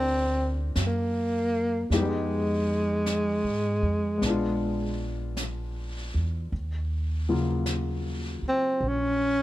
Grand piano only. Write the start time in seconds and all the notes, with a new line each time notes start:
Already playing: A#3 C4 D4 F4 G4 A4 A#4
1.92 G#3 B3 D#4 G4
4.18 G#3 B3
4.26 D4 F4
7.29 C#3 F#3 A#3 F4